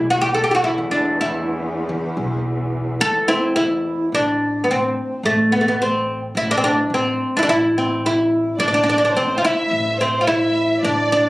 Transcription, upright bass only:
0, 0, Header, 1, 2, 480
1, 0, Start_track
1, 0, Tempo, 559180
1, 1620, Time_signature, 4, 2, 24, 8
1, 9692, End_track
2, 0, Start_track
2, 0, Title_t, "Upright bass"
2, 0, Program_c, 0, 32
2, 0, Note_on_c, 0, 35, 88
2, 631, Note_off_c, 0, 35, 0
2, 668, Note_on_c, 0, 40, 96
2, 1589, Note_off_c, 0, 40, 0
2, 1622, Note_on_c, 0, 40, 94
2, 1838, Note_off_c, 0, 40, 0
2, 1861, Note_on_c, 0, 35, 88
2, 2545, Note_off_c, 0, 35, 0
2, 2578, Note_on_c, 0, 40, 94
2, 3503, Note_off_c, 0, 40, 0
2, 3538, Note_on_c, 0, 33, 83
2, 3983, Note_off_c, 0, 33, 0
2, 4014, Note_on_c, 0, 33, 76
2, 4233, Note_off_c, 0, 33, 0
2, 4492, Note_on_c, 0, 33, 96
2, 5421, Note_off_c, 0, 33, 0
2, 5449, Note_on_c, 0, 33, 91
2, 5900, Note_off_c, 0, 33, 0
2, 5922, Note_on_c, 0, 33, 85
2, 6147, Note_off_c, 0, 33, 0
2, 6415, Note_on_c, 0, 33, 105
2, 7343, Note_off_c, 0, 33, 0
2, 7369, Note_on_c, 0, 33, 94
2, 7820, Note_off_c, 0, 33, 0
2, 7848, Note_on_c, 0, 33, 91
2, 8071, Note_off_c, 0, 33, 0
2, 8335, Note_on_c, 0, 33, 105
2, 9264, Note_off_c, 0, 33, 0
2, 9294, Note_on_c, 0, 33, 96
2, 9692, Note_off_c, 0, 33, 0
2, 9692, End_track
0, 0, End_of_file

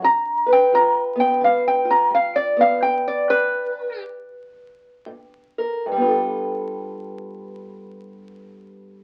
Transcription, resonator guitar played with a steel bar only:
0, 0, Header, 1, 2, 480
1, 0, Start_track
1, 0, Tempo, 693642
1, 22, Time_signature, 4, 2, 24, 8
1, 1462, Tempo, 730816
1, 2902, Tempo, 782269
1, 3862, Tempo, 808625
1, 5742, End_track
2, 0, Start_track
2, 0, Title_t, "Resonator guitar played with a steel bar"
2, 0, Program_c, 0, 25
2, 31, Note_on_c, 0, 82, 112
2, 334, Note_off_c, 0, 82, 0
2, 364, Note_on_c, 0, 79, 97
2, 506, Note_off_c, 0, 79, 0
2, 517, Note_on_c, 0, 82, 93
2, 662, Note_off_c, 0, 82, 0
2, 830, Note_on_c, 0, 79, 86
2, 979, Note_off_c, 0, 79, 0
2, 999, Note_on_c, 0, 77, 91
2, 1145, Note_off_c, 0, 77, 0
2, 1160, Note_on_c, 0, 79, 89
2, 1307, Note_off_c, 0, 79, 0
2, 1318, Note_on_c, 0, 82, 92
2, 1467, Note_off_c, 0, 82, 0
2, 1483, Note_on_c, 0, 77, 85
2, 1622, Note_on_c, 0, 74, 91
2, 1624, Note_off_c, 0, 77, 0
2, 1772, Note_off_c, 0, 74, 0
2, 1787, Note_on_c, 0, 77, 88
2, 1930, Note_on_c, 0, 79, 91
2, 1934, Note_off_c, 0, 77, 0
2, 2085, Note_off_c, 0, 79, 0
2, 2095, Note_on_c, 0, 74, 81
2, 2242, Note_on_c, 0, 71, 106
2, 2248, Note_off_c, 0, 74, 0
2, 2718, Note_off_c, 0, 71, 0
2, 5742, End_track
0, 0, End_of_file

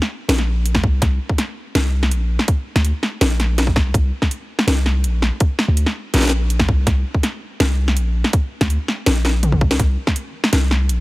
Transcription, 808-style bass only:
0, 0, Header, 1, 2, 480
1, 0, Start_track
1, 0, Tempo, 365854
1, 1334, Time_signature, 4, 2, 24, 8
1, 14437, End_track
2, 0, Start_track
2, 0, Title_t, "808-style bass"
2, 0, Program_c, 0, 38
2, 375, Note_on_c, 0, 34, 101
2, 1080, Note_off_c, 0, 34, 0
2, 1095, Note_on_c, 0, 36, 85
2, 1316, Note_off_c, 0, 36, 0
2, 1338, Note_on_c, 0, 36, 101
2, 1557, Note_off_c, 0, 36, 0
2, 2296, Note_on_c, 0, 36, 103
2, 2774, Note_on_c, 0, 34, 88
2, 2794, Note_off_c, 0, 36, 0
2, 3121, Note_off_c, 0, 34, 0
2, 3617, Note_on_c, 0, 38, 104
2, 3837, Note_off_c, 0, 38, 0
2, 4213, Note_on_c, 0, 34, 103
2, 4932, Note_on_c, 0, 36, 97
2, 4952, Note_off_c, 0, 34, 0
2, 5154, Note_off_c, 0, 36, 0
2, 5173, Note_on_c, 0, 36, 101
2, 5395, Note_off_c, 0, 36, 0
2, 6130, Note_on_c, 0, 36, 102
2, 6611, Note_on_c, 0, 34, 87
2, 6631, Note_off_c, 0, 36, 0
2, 6960, Note_off_c, 0, 34, 0
2, 7455, Note_on_c, 0, 38, 105
2, 7677, Note_off_c, 0, 38, 0
2, 8055, Note_on_c, 0, 34, 103
2, 8760, Note_off_c, 0, 34, 0
2, 8771, Note_on_c, 0, 36, 90
2, 8994, Note_off_c, 0, 36, 0
2, 9010, Note_on_c, 0, 36, 100
2, 9234, Note_off_c, 0, 36, 0
2, 9972, Note_on_c, 0, 36, 103
2, 10455, Note_on_c, 0, 34, 92
2, 10475, Note_off_c, 0, 36, 0
2, 10801, Note_off_c, 0, 34, 0
2, 11297, Note_on_c, 0, 38, 104
2, 11517, Note_off_c, 0, 38, 0
2, 11896, Note_on_c, 0, 34, 97
2, 12612, Note_on_c, 0, 36, 96
2, 12632, Note_off_c, 0, 34, 0
2, 12834, Note_off_c, 0, 36, 0
2, 12852, Note_on_c, 0, 36, 101
2, 13074, Note_off_c, 0, 36, 0
2, 13813, Note_on_c, 0, 36, 100
2, 14291, Note_on_c, 0, 34, 90
2, 14310, Note_off_c, 0, 36, 0
2, 14437, Note_off_c, 0, 34, 0
2, 14437, End_track
0, 0, End_of_file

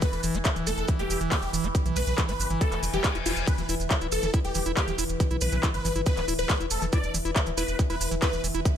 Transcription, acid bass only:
0, 0, Header, 1, 2, 480
1, 0, Start_track
1, 0, Key_signature, 1, "minor"
1, 0, Tempo, 431655
1, 23, Time_signature, 4, 2, 24, 8
1, 9752, End_track
2, 0, Start_track
2, 0, Title_t, "Acid bass"
2, 0, Program_c, 0, 38
2, 24, Note_on_c, 0, 59, 88
2, 67, Note_off_c, 0, 59, 0
2, 264, Note_on_c, 0, 52, 78
2, 384, Note_on_c, 0, 59, 77
2, 401, Note_off_c, 0, 52, 0
2, 427, Note_off_c, 0, 59, 0
2, 624, Note_on_c, 0, 52, 78
2, 744, Note_on_c, 0, 59, 79
2, 761, Note_off_c, 0, 52, 0
2, 787, Note_off_c, 0, 59, 0
2, 984, Note_on_c, 0, 52, 81
2, 1104, Note_on_c, 0, 59, 75
2, 1120, Note_off_c, 0, 52, 0
2, 1147, Note_off_c, 0, 59, 0
2, 1344, Note_on_c, 0, 52, 78
2, 1464, Note_on_c, 0, 59, 85
2, 1481, Note_off_c, 0, 52, 0
2, 1507, Note_off_c, 0, 59, 0
2, 1704, Note_on_c, 0, 52, 75
2, 1824, Note_on_c, 0, 59, 77
2, 1841, Note_off_c, 0, 52, 0
2, 1867, Note_off_c, 0, 59, 0
2, 2064, Note_on_c, 0, 52, 80
2, 2184, Note_on_c, 0, 59, 77
2, 2201, Note_off_c, 0, 52, 0
2, 2227, Note_off_c, 0, 59, 0
2, 2424, Note_on_c, 0, 52, 81
2, 2544, Note_on_c, 0, 59, 80
2, 2561, Note_off_c, 0, 52, 0
2, 2587, Note_off_c, 0, 59, 0
2, 2784, Note_on_c, 0, 52, 80
2, 2904, Note_on_c, 0, 59, 85
2, 2921, Note_off_c, 0, 52, 0
2, 2947, Note_off_c, 0, 59, 0
2, 3144, Note_on_c, 0, 52, 78
2, 3170, Note_off_c, 0, 52, 0
2, 3264, Note_on_c, 0, 52, 76
2, 3307, Note_off_c, 0, 52, 0
2, 3504, Note_on_c, 0, 64, 108
2, 3530, Note_off_c, 0, 64, 0
2, 3624, Note_on_c, 0, 64, 77
2, 3689, Note_off_c, 0, 64, 0
2, 3984, Note_on_c, 0, 52, 80
2, 4027, Note_off_c, 0, 52, 0
2, 4104, Note_on_c, 0, 64, 75
2, 4168, Note_off_c, 0, 64, 0
2, 4344, Note_on_c, 0, 52, 83
2, 4387, Note_off_c, 0, 52, 0
2, 4463, Note_on_c, 0, 64, 79
2, 4528, Note_off_c, 0, 64, 0
2, 4703, Note_on_c, 0, 52, 77
2, 4746, Note_off_c, 0, 52, 0
2, 4823, Note_on_c, 0, 64, 84
2, 4888, Note_off_c, 0, 64, 0
2, 5063, Note_on_c, 0, 52, 77
2, 5106, Note_off_c, 0, 52, 0
2, 5183, Note_on_c, 0, 64, 76
2, 5248, Note_off_c, 0, 64, 0
2, 5423, Note_on_c, 0, 52, 82
2, 5466, Note_off_c, 0, 52, 0
2, 5543, Note_on_c, 0, 64, 79
2, 5608, Note_off_c, 0, 64, 0
2, 5783, Note_on_c, 0, 52, 87
2, 5826, Note_off_c, 0, 52, 0
2, 5903, Note_on_c, 0, 64, 80
2, 5968, Note_off_c, 0, 64, 0
2, 6143, Note_on_c, 0, 52, 79
2, 6186, Note_off_c, 0, 52, 0
2, 6263, Note_on_c, 0, 64, 84
2, 6328, Note_off_c, 0, 64, 0
2, 6503, Note_on_c, 0, 52, 80
2, 6546, Note_off_c, 0, 52, 0
2, 6623, Note_on_c, 0, 64, 81
2, 6688, Note_off_c, 0, 64, 0
2, 6863, Note_on_c, 0, 52, 78
2, 6907, Note_off_c, 0, 52, 0
2, 6983, Note_on_c, 0, 64, 78
2, 7048, Note_off_c, 0, 64, 0
2, 7223, Note_on_c, 0, 52, 83
2, 7267, Note_off_c, 0, 52, 0
2, 7343, Note_on_c, 0, 64, 82
2, 7408, Note_off_c, 0, 64, 0
2, 7583, Note_on_c, 0, 52, 75
2, 7626, Note_off_c, 0, 52, 0
2, 7703, Note_on_c, 0, 64, 88
2, 7768, Note_off_c, 0, 64, 0
2, 7943, Note_on_c, 0, 52, 80
2, 7987, Note_off_c, 0, 52, 0
2, 8063, Note_on_c, 0, 64, 76
2, 8128, Note_off_c, 0, 64, 0
2, 8304, Note_on_c, 0, 52, 78
2, 8347, Note_off_c, 0, 52, 0
2, 8424, Note_on_c, 0, 64, 77
2, 8488, Note_off_c, 0, 64, 0
2, 8663, Note_on_c, 0, 52, 84
2, 8706, Note_off_c, 0, 52, 0
2, 8783, Note_on_c, 0, 64, 78
2, 8848, Note_off_c, 0, 64, 0
2, 9023, Note_on_c, 0, 52, 77
2, 9067, Note_off_c, 0, 52, 0
2, 9143, Note_on_c, 0, 64, 83
2, 9208, Note_off_c, 0, 64, 0
2, 9383, Note_on_c, 0, 52, 76
2, 9427, Note_off_c, 0, 52, 0
2, 9503, Note_on_c, 0, 64, 78
2, 9568, Note_off_c, 0, 64, 0
2, 9752, End_track
0, 0, End_of_file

